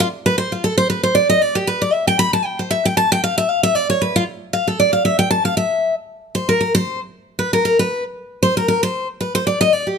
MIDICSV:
0, 0, Header, 1, 2, 480
1, 0, Start_track
1, 0, Key_signature, 0, "major"
1, 0, Tempo, 259628
1, 1657, Time_signature, 4, 2, 24, 8
1, 18453, End_track
2, 0, Start_track
2, 0, Title_t, "Steel-string acoustic guitar"
2, 0, Program_c, 0, 25
2, 2, Note_on_c, 0, 65, 108
2, 132, Note_off_c, 0, 65, 0
2, 478, Note_on_c, 0, 71, 103
2, 690, Note_off_c, 0, 71, 0
2, 699, Note_on_c, 0, 72, 95
2, 951, Note_off_c, 0, 72, 0
2, 962, Note_on_c, 0, 65, 54
2, 1172, Note_off_c, 0, 65, 0
2, 1182, Note_on_c, 0, 69, 93
2, 1426, Note_off_c, 0, 69, 0
2, 1434, Note_on_c, 0, 72, 104
2, 1647, Note_off_c, 0, 72, 0
2, 1657, Note_on_c, 0, 71, 85
2, 1905, Note_off_c, 0, 71, 0
2, 1912, Note_on_c, 0, 72, 93
2, 2122, Note_on_c, 0, 74, 93
2, 2126, Note_off_c, 0, 72, 0
2, 2382, Note_off_c, 0, 74, 0
2, 2394, Note_on_c, 0, 75, 113
2, 2619, Note_off_c, 0, 75, 0
2, 2619, Note_on_c, 0, 74, 83
2, 2870, Note_on_c, 0, 67, 86
2, 2871, Note_off_c, 0, 74, 0
2, 3085, Note_off_c, 0, 67, 0
2, 3095, Note_on_c, 0, 71, 99
2, 3349, Note_off_c, 0, 71, 0
2, 3357, Note_on_c, 0, 74, 90
2, 3568, Note_off_c, 0, 74, 0
2, 3568, Note_on_c, 0, 76, 81
2, 3825, Note_off_c, 0, 76, 0
2, 3835, Note_on_c, 0, 79, 104
2, 4042, Note_off_c, 0, 79, 0
2, 4049, Note_on_c, 0, 83, 117
2, 4304, Note_off_c, 0, 83, 0
2, 4311, Note_on_c, 0, 81, 102
2, 4528, Note_off_c, 0, 81, 0
2, 4528, Note_on_c, 0, 79, 94
2, 4785, Note_off_c, 0, 79, 0
2, 4792, Note_on_c, 0, 72, 57
2, 5002, Note_on_c, 0, 76, 99
2, 5006, Note_off_c, 0, 72, 0
2, 5262, Note_off_c, 0, 76, 0
2, 5276, Note_on_c, 0, 79, 99
2, 5484, Note_off_c, 0, 79, 0
2, 5492, Note_on_c, 0, 81, 105
2, 5747, Note_off_c, 0, 81, 0
2, 5766, Note_on_c, 0, 79, 124
2, 5973, Note_off_c, 0, 79, 0
2, 5983, Note_on_c, 0, 77, 103
2, 6233, Note_off_c, 0, 77, 0
2, 6242, Note_on_c, 0, 76, 104
2, 6465, Note_off_c, 0, 76, 0
2, 6465, Note_on_c, 0, 77, 106
2, 6710, Note_off_c, 0, 77, 0
2, 6718, Note_on_c, 0, 76, 106
2, 6933, Note_off_c, 0, 76, 0
2, 6933, Note_on_c, 0, 74, 91
2, 7188, Note_off_c, 0, 74, 0
2, 7203, Note_on_c, 0, 73, 96
2, 7412, Note_off_c, 0, 73, 0
2, 7424, Note_on_c, 0, 71, 87
2, 7674, Note_off_c, 0, 71, 0
2, 7687, Note_on_c, 0, 65, 106
2, 7815, Note_off_c, 0, 65, 0
2, 8380, Note_on_c, 0, 77, 82
2, 8631, Note_off_c, 0, 77, 0
2, 8643, Note_on_c, 0, 69, 75
2, 8852, Note_off_c, 0, 69, 0
2, 8866, Note_on_c, 0, 74, 92
2, 9103, Note_off_c, 0, 74, 0
2, 9111, Note_on_c, 0, 77, 98
2, 9326, Note_off_c, 0, 77, 0
2, 9335, Note_on_c, 0, 76, 84
2, 9583, Note_off_c, 0, 76, 0
2, 9590, Note_on_c, 0, 79, 109
2, 9802, Note_off_c, 0, 79, 0
2, 9809, Note_on_c, 0, 81, 121
2, 10066, Note_off_c, 0, 81, 0
2, 10075, Note_on_c, 0, 77, 104
2, 10288, Note_off_c, 0, 77, 0
2, 10296, Note_on_c, 0, 76, 88
2, 10986, Note_off_c, 0, 76, 0
2, 11737, Note_on_c, 0, 72, 88
2, 11991, Note_off_c, 0, 72, 0
2, 11993, Note_on_c, 0, 70, 90
2, 12190, Note_off_c, 0, 70, 0
2, 12212, Note_on_c, 0, 70, 77
2, 12465, Note_off_c, 0, 70, 0
2, 12472, Note_on_c, 0, 72, 118
2, 12922, Note_off_c, 0, 72, 0
2, 13659, Note_on_c, 0, 71, 85
2, 13912, Note_off_c, 0, 71, 0
2, 13923, Note_on_c, 0, 70, 93
2, 14120, Note_off_c, 0, 70, 0
2, 14143, Note_on_c, 0, 70, 83
2, 14394, Note_off_c, 0, 70, 0
2, 14408, Note_on_c, 0, 71, 93
2, 14851, Note_off_c, 0, 71, 0
2, 15578, Note_on_c, 0, 72, 102
2, 15831, Note_off_c, 0, 72, 0
2, 15842, Note_on_c, 0, 70, 90
2, 16032, Note_off_c, 0, 70, 0
2, 16054, Note_on_c, 0, 70, 84
2, 16310, Note_off_c, 0, 70, 0
2, 16323, Note_on_c, 0, 72, 97
2, 16767, Note_off_c, 0, 72, 0
2, 17019, Note_on_c, 0, 71, 76
2, 17271, Note_off_c, 0, 71, 0
2, 17283, Note_on_c, 0, 72, 100
2, 17493, Note_off_c, 0, 72, 0
2, 17504, Note_on_c, 0, 74, 93
2, 17754, Note_off_c, 0, 74, 0
2, 17762, Note_on_c, 0, 75, 102
2, 17983, Note_off_c, 0, 75, 0
2, 17983, Note_on_c, 0, 74, 78
2, 18233, Note_off_c, 0, 74, 0
2, 18243, Note_on_c, 0, 67, 51
2, 18452, Note_off_c, 0, 67, 0
2, 18453, End_track
0, 0, End_of_file